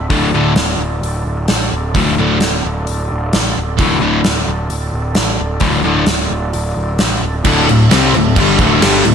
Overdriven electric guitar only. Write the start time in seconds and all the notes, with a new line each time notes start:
0.10 D2 A2 D3
0.34 D2 A2 D3
1.96 D2 A2 D3
2.18 D2 A2 D3
3.80 D2 A2 D3
4.00 D2 A2 D3
5.61 D2 A2 D3
5.84 D2 A2 D3
7.46 D2 A2 D3
7.68 D2 A2
7.91 C3 G3 C4
8.15 D2 A2
8.38 G2 D3 G3
8.61 D2 A2 D3
8.81 G2 D3 G3
9.05 D2 A2